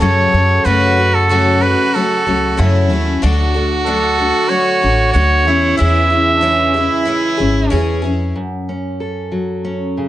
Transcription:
Already playing: C#3 F#3 A3 F#4 A4
0.00 F#2 C#3 F#3 A3 C#4 A4 C#5
0.32 F#2 F#3 A3 C#4 A4
0.64 F#2 C#3 F#3 A3 C#4 F#4 A4 B4
0.97 F#3 A3 C#4 A4
1.14 A4
1.29 F#2 C#3 F#3 A3 C#4 F#4 A4
1.61 F#3 A3 C#4 A4 B4
1.94 F#3 A3 C#4 A4
2.25 C#2 F#3 A3 C#4 A4
2.57 F#2 C#3 F#3 A3 C#4 E4 A4
2.90 D#2 F#3 A3 C#4 A4
3.22 D2 D3 F#3 A3 D4 F#4 A4
3.54 A3 D4 A4
3.85 D3 F#3 A3 D4 A4
4.18 A3 D4 A4
4.49 F#3 A3 D4 A4 C#5
4.81 A1 A3 D4 A4
5.13 D2 D3 F#3 A3 D4 A4 C#5
5.45 E2 C#3 E3 G#3 C#4 E4 G#4
5.77 E2 E3 C#4 E4 G#4 E5
6.10 C#4 E4 G#4
6.36 D4
6.41 E3 C#4 E4 G#4
6.74 C#4 E4 G#4
7.05 E3 C#4 E4 G#4
7.37 G#1 C#4 E4 G#4
7.70 E2 E3 C#4 E4 G#4
8.02 F2 C#4 E4 G#4
8.36 F#2
8.69 C#4
9.00 A4
9.32 F#3
9.65 C#4
9.97 C#3

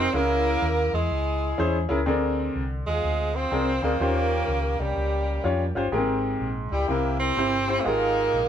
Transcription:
Already playing: C4 C5
0.13 C#2 C#3 A#3 C#4 E4 G#4 A#4
0.62 D#2
0.93 E2 G#3 E4 G#4
1.11 C#2
1.58 E2 C#4 E4 G#4 C5
1.89 C#2 C#4 E4 G#4 A#4
2.06 D2 D3 C4 D4 G#4 A#4
2.55 C2
2.86 D#2 G#3 C4 F4 G#4
3.04 D2
3.35 C4 F4 G#4 C5
3.51 C2 C4 D4 G#4 A#4
3.82 D2 A#3 C4 D4 G#4 A#4
4.00 D#2 D#3 C#4 F4 G4 A#4 C5
4.48 C#2
4.79 C2 G3 A#3 C#4 G4
4.96 C#2
5.44 F2 C#4 F4 G4 C#5
5.75 G1 C#4 F4 G4 C5
5.92 G#1 G#2 A#3 G4 G#4 A#4
5.97 C4
6.40 A#1
6.71 C#2 G3 A#3 E4 G4
6.88 C2 C3 A#3 C4 E4 G4 A#4
7.19 C4 E4 G4 C5
7.37 G1 C4 E4 G4 C5
7.68 C4 E4 G4 C5
7.80 A3
7.84 G#1 G#2 A#3 D#4 F4 G4 G#4 A#4
8.34 A#1

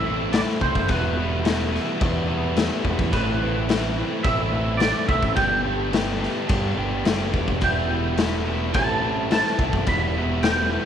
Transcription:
Already playing: A1 E5
0.05 A2 E3 A3 C4 E4
0.32 A2 E3 A3 C4 E4 D5, snare, crash
0.49 snare
0.61 C2 A2 E3 A3 C4 E4 C5, kick
0.75 F#1, kick
0.88 E1 E2 B2 E3 G3 B3 E4 B4, kick, crash
1.16 E2 B2 E3 G3 B3 E4
1.44 E2 B2 E3 G3 B3 E4, snare, crash
1.71 E2 B2 E3 G3 B3 E4, snare
1.99 E2 B2 E3 G3 B3 E4, kick, crash
2.27 E2 B2 E3 G3 B3 E4
2.55 E2 B2 E3 G3 B3 E4, snare, crash
2.84 E1 E2 B2 E3 G3 B3 E4, kick
2.99 E2, kick
3.12 A1 A2 E3 A3 C4 E4 B4, kick, crash
3.41 A2 E3 A3 C4 E4
3.69 A2 E3 A3 C4 E4, snare, crash
3.98 A2 E3 A3 C4 E4
4.23 A1 A2 E3 A3 C4 E4 E5, kick, crash
4.51 A2 E3 A3 C4 E4
4.77 A2 E3 A3 C4 D5, snare, crash
4.81 E4
5.08 C2 A2 E3 A3 C4 E4 E5, kick
5.23 A1, kick
5.35 G1 G2 D3 G3 B3 D4 G4 G5, kick, crash
5.64 G2 D3 G3 B3 D4 G4
5.92 G2 D3 G3 B3 D4 G4, snare, crash
6.19 G2 D3 G3 B3 D4 G4
6.23 snare
6.47 G2 D3 G3 B3 D4 G4, kick, crash
6.77 G1 G2 D3 G3 B3 D4 G4
7.05 F#1 G2 D3 G3 B3 D4 G4, snare, crash
7.32 E1 G2 D3 G3 B3 D4 G4, kick
7.48 kick
7.61 E1 E2 B2 E3 G3 B3 E4 G5, kick, crash
7.89 E2 B2 E3 G3 B3 E4
8.17 E2 B2 E3 G3 B3 E4, snare, crash
8.45 E2 B2 E3 G3 B3 E4
8.73 A1 A2 E3 A3 C4 E4 A5, kick, crash
9.01 A2 E3 A3 C4 E4
9.30 A2 E3 A3 C4 E4 A5, snare, crash
9.46 snare
9.59 C2 A2 E3 A3 C4 E4, kick
9.73 F#1, kick
9.86 E1 E2 B2 E3 G3 B3 E4 B5, kick, crash
10.16 E2 B2 E3 G3 B3 E4
10.43 E2 B2 E3 G3 B3 E4 G5, snare, crash
10.71 E2 B2 E3 G3 B3 E4

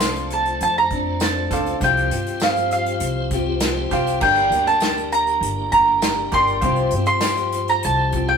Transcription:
Already playing: C2 A3 D4 F4 A4 C5 D5 F5 C6
0.00 F3 C4, snare, closed hi-hat, tambourine
0.04 D4 A4
0.16 closed hi-hat
0.30 A5, closed hi-hat
0.45 closed hi-hat
0.61 F2 A5, closed hi-hat
0.78 A#5
0.91 C4 D4, kick, closed hi-hat
1.20 F3 C4 D4 A4 A5, snare, closed hi-hat, tambourine
1.50 C#2 C4 D4 A4 C5 D5 F5, kick, snare, closed hi-hat
1.66 closed hi-hat
1.80 C2 C3 F3 C4 F4 G4 C5 F5 G5, kick, closed hi-hat
1.97 closed hi-hat
2.10 G2 C4 F4 G4, closed hi-hat
2.27 closed hi-hat
2.40 F3 C4 F4 F5, snare, closed hi-hat, tambourine
2.44 G4
2.56 closed hi-hat
2.71 F5, closed hi-hat
2.86 closed hi-hat
3.00 C2, closed hi-hat
3.31 F4 G4, kick, closed hi-hat
3.35 C4
3.60 F3 C4 F4 G4, snare, closed hi-hat, tambourine
3.91 C2 C4 F4 G4 C5 F5 G5, kick, snare, closed hi-hat
4.07 closed hi-hat
4.21 G1 G2 D3 G3 A#3 D4 G4 A#4 D5 G5, kick, crash
4.25 A#3 G4
4.36 closed hi-hat
4.50 D2 G4, closed hi-hat
4.55 G3 A#3 D4
4.67 A5, closed hi-hat
4.80 G3, snare, closed hi-hat, tambourine
4.85 A#3 D4 G4
4.97 closed hi-hat
5.12 A#5, closed hi-hat
5.27 closed hi-hat
5.41 G1, closed hi-hat
5.72 A#3 D4 G4 A#5, kick, closed hi-hat
5.76 G3
6.02 G3 A#3 D4 G4, snare, closed hi-hat, tambourine
6.32 G1 G4 A#4 D5 G5 C6, kick, snare, closed hi-hat
6.36 G3 A#3 D4
6.47 closed hi-hat
6.61 C2 C3 F3 C4 F4 G4 C5 F5 G5, kick, closed hi-hat
6.76 closed hi-hat
6.91 G2, closed hi-hat
6.95 C4 F4 G4
7.06 C6, closed hi-hat
7.21 F3 C4, snare, closed hi-hat, tambourine
7.25 F4 G4
7.37 closed hi-hat
7.52 closed hi-hat
7.68 A#5, closed hi-hat
7.83 C2 A5, closed hi-hat
8.12 C4 F4 G4, kick, closed hi-hat
8.29 G5

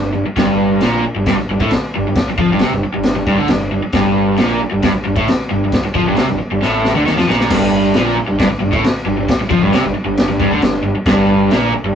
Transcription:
Already playing: G1 G2
0.13 G1 G2
0.26 muted picked electric bass stroke, muted overdriven electric guitar stroke
0.37 G1 G2, kick, snare, crash
0.81 A#1 A#2, snare, crash
1.05 muted overdriven electric guitar stroke, muted picked electric bass stroke
1.15 G1 G2
1.26 G1 G2, kick, snare, crash
1.38 muted picked electric bass stroke, muted overdriven electric guitar stroke
1.49 G1 G2
1.60 A1 A2, kick
1.71 muted overdriven electric guitar stroke, muted picked electric bass stroke, snare, crash
1.96 G1 G2
2.07 G1 G2
2.15 muted picked electric bass stroke, muted overdriven electric guitar stroke, kick, snare, crash
2.29 muted picked electric bass stroke, muted overdriven electric guitar stroke
2.38 F2 F3, kick
2.50 G1 G2
2.59 C2 C3, snare, crash
2.72 G1 G2
2.84 muted overdriven electric guitar stroke, muted picked electric bass stroke
2.94 G1 G2
3.03 snare, crash
3.16 G1 G2
3.27 G1 G2, kick
3.38 D2 D3
3.48 G1 G2, snare, crash
3.71 G1 G2
3.83 muted picked electric bass stroke, muted overdriven electric guitar stroke
3.92 G1 G2, kick, snare, crash
4.38 A#1 A#2, snare, crash
4.61 muted overdriven electric guitar stroke, muted picked electric bass stroke
4.71 G1 G2
4.83 G1 G2, kick, snare, crash
4.94 muted overdriven electric guitar stroke, muted picked electric bass stroke
5.05 G1 G2
5.16 A1 A2, kick
5.28 muted overdriven electric guitar stroke, muted picked electric bass stroke, snare, crash
5.51 G1 G2
5.64 G1 G2
5.72 muted picked electric bass stroke, muted overdriven electric guitar stroke, kick, snare, crash
5.85 muted overdriven electric guitar stroke, muted picked electric bass stroke
5.94 F2 F3, kick
6.07 G1 G2
6.16 C3, snare, crash
6.21 C2
6.29 G1 G2
6.39 muted overdriven electric guitar stroke, muted picked electric bass stroke
6.51 G1 G2
6.62 A1 A2, snare
6.85 snare
6.95 D2 D3
7.05 D#2 D#3, snare
7.17 F2 F3, snare
7.28 A#1 A#2, snare
7.40 snare
7.50 G1 G2, kick, snare, crash
7.94 A#1 A#2, snare, crash
8.18 muted overdriven electric guitar stroke, muted picked electric bass stroke
8.28 G1 G2
8.39 G1 G2, kick, snare, crash
8.50 muted overdriven electric guitar stroke, muted picked electric bass stroke
8.60 G1 G2
8.72 A1 A2, kick
8.84 muted overdriven electric guitar stroke, muted picked electric bass stroke, snare, crash
9.06 G1 G2
9.17 G1 G2
9.28 muted picked electric bass stroke, muted overdriven electric guitar stroke, kick, snare, crash
9.41 muted overdriven electric guitar stroke, muted picked electric bass stroke
9.50 F2 F3, kick
9.62 G1 G2
9.72 C2 C3, snare, crash
9.84 G1 G2
9.95 muted picked electric bass stroke, muted overdriven electric guitar stroke
10.05 G1 G2
10.17 snare, crash
10.28 G1 G2
10.40 G1 G2, kick
10.51 D2 D3
10.60 G1 G2, snare, crash
10.83 G1 G2
10.95 muted picked electric bass stroke, muted overdriven electric guitar stroke
11.06 G1 G2, kick, snare, crash
11.50 A#1 A#2, snare, crash
11.72 muted picked electric bass stroke, muted overdriven electric guitar stroke
11.84 G1 G2

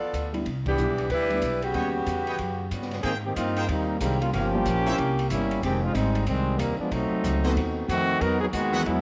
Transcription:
Already playing: B3 F4 A4 D5
0.01 muted upright bass stroke
0.13 D2, kick, hi-hat pedal, ride
0.33 G3 B3 D4 E4, ride
0.45 C2, kick, ride
0.66 E3 B3 D4 G4, kick, ride
0.77 B1 G3 B3 D4 E4, hi-hat pedal
0.98 ride
1.10 D2 G3 D4 E4 B4, kick, ride
1.29 G3 B3 D4 E4, ride
1.42 B1, kick, hi-hat pedal, ride
1.62 C#3 B3 F#4 G4, ride
1.74 D#2 G3 B3 C#4 B4 C#5 D#5 F#5 G5, kick, ride
2.06 E2, kick, hi-hat pedal, ride
2.27 B4 C#5 D#5 G5, ride
2.39 F#2, kick, ride
2.70 G2 C#3 G3 B3 F#4, kick, hi-hat pedal, ride
2.82 snare
2.91 snare, ride
3.03 G#2 D#3 A#3 C4 G#4 A#4 C5 G5, kick, ride
3.25 D#3 A#3 C4 G4
3.36 G2 A#3 C4 D#4 F4, kick, hi-hat pedal, ride
3.56 G#4 A#4 C5 G5, ride
3.68 D#2 G3 A#3 C4 D#4, kick, ride
4.00 C2 D#3 G3 G#3 A#3 C4 D#4 G4, kick, hi-hat pedal, ride
4.21 G3 A#3 C#4 F4, ride
4.33 G1 F3 A#3 C#4 G4 A#4 C#5 F5, kick, ride
4.54 G3 A#3 C#4 F4 G4
4.65 A#1, kick, hi-hat pedal, ride
4.86 A#3 C4 C#4 E4 G4 A#4 C5 C#5 E5, ride
4.98 C2, kick, ride
5.19 ride
5.30 G1 G3 A#3 C#4 E4, kick, hi-hat pedal, ride
5.51 ride
5.62 F1 D#3 G#3 C4 G4, kick, ride
5.84 G#3 C4 D#4 F4
5.94 G#1 G3 G#3 C4 D#4, kick, hi-hat pedal, ride
6.15 ride
6.26 C2 D#3 G3 G#3 C4, kick, ride
6.58 D#2 C3 D#3 G3 A#3, kick, hi-hat pedal, ride
6.78 F3 G#3 B3 D4, muted upright bass stroke
6.91 B1 F#3 A3 C4 D#4, kick, ride
7.11 muted upright bass stroke
7.24 C#2, kick, hi-hat pedal, ride
7.44 A3 B3 C4 D#4 F#4 A4 B4 C5 D#5, snare, ride
7.56 D#2, kick, ride
7.88 F2 D#3 A3 C4 F#4, kick, hi-hat pedal, ride
8.21 E2 F#3 B3 D#4 A#4, kick, ride
8.41 F#3 B3 D#4 G#4
8.53 D#2 D#3 G#3 B3 F#4, kick, hi-hat pedal, ride
8.73 E3 G#3 B3 D#4 F#4 G#4 D#5 E5 F#5, ride
8.85 E2 F#3 G#3 B3 E4, kick, ride

